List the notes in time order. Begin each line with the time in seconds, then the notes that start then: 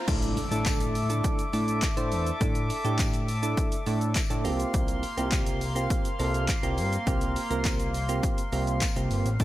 0.08 A2 A3 D4 E4 A4 E5 D6, kick, closed hi-hat, crash, impact, shaker
0.22 closed hi-hat, shaker
0.37 open hi-hat, shaker
0.51 A2 A3 D4 E4 A4, closed hi-hat, shaker
0.66 kick, clap, closed hi-hat, tambourine, shaker
0.80 closed hi-hat, shaker
0.95 open hi-hat, shaker
1.09 A3 D4 E4 A4, closed hi-hat, shaker
1.24 kick, closed hi-hat, shaker
1.39 closed hi-hat, shaker
1.53 A2 A3 D4 E4 A4, open hi-hat, shaker
1.68 closed hi-hat, shaker
1.82 kick, clap, closed hi-hat, tambourine, shaker
1.97 A2 A3 D4 E4 C5, closed hi-hat, shaker
2.12 E2, open hi-hat, shaker
2.27 closed hi-hat, shaker
2.40 A2 A3 D4 E4 A4, kick, closed hi-hat, shaker
2.55 closed hi-hat, shaker
2.70 open hi-hat, shaker
2.84 A2 A3 D4 E4 G4, closed hi-hat, shaker
2.99 kick, clap, closed hi-hat, tambourine, shaker
3.14 closed hi-hat, shaker
3.28 open hi-hat, shaker
3.42 A3 D4 E4 A4, closed hi-hat, shaker
3.57 kick, closed hi-hat, shaker
3.72 closed hi-hat, shaker
3.86 A2 A3 D4 E4 A4, open hi-hat, shaker
4.01 closed hi-hat, shaker
4.15 kick, clap, closed hi-hat, tambourine, shaker
4.30 A2 A3 D4 E4 A4, closed hi-hat, shaker
4.44 C2 A#3 C4 F4 G4 F5 C6, open hi-hat, shaker
4.60 closed hi-hat, shaker
4.74 C2, kick, closed hi-hat, shaker
4.88 closed hi-hat, shaker
5.03 open hi-hat, shaker
5.17 C2 A#3 C4 F4 G4, closed hi-hat, shaker
5.32 kick, clap, closed hi-hat, tambourine, shaker
5.46 closed hi-hat, shaker
5.61 open hi-hat, shaker
5.75 A#3 C4 F4 G4, closed hi-hat, shaker
5.90 kick, closed hi-hat, shaker
6.05 closed hi-hat, shaker
6.19 C2 A#3 C4 F4 A4, open hi-hat, shaker
6.34 closed hi-hat, shaker
6.49 kick, clap, closed hi-hat, tambourine, shaker
6.63 C2 A#3 C4 F4 G4, closed hi-hat, shaker
6.78 G2, open hi-hat, shaker
6.93 closed hi-hat, shaker
7.07 C2 A#3 C4 F4 G4, kick, closed hi-hat, shaker
7.21 closed hi-hat, shaker
7.36 open hi-hat, shaker
7.50 C2 A#3 C4 F4 A#4, closed hi-hat, shaker
7.65 kick, clap, closed hi-hat, tambourine, shaker
7.80 closed hi-hat, shaker
7.94 open hi-hat, shaker
8.09 A#3 C4 F4 G4, closed hi-hat, shaker
8.23 kick, closed hi-hat, shaker
8.38 closed hi-hat, shaker
8.52 C2 A#3 C4 F4 G4, open hi-hat, shaker
8.67 closed hi-hat, shaker
8.81 kick, clap, closed hi-hat, tambourine, shaker
8.96 C2 A#3 C4 F4 G4, closed hi-hat, shaker
9.11 G1, open hi-hat, shaker
9.25 A1, closed hi-hat, shaker
9.40 A1 A3 D4 E4 A4 E5 D6, kick, closed hi-hat, shaker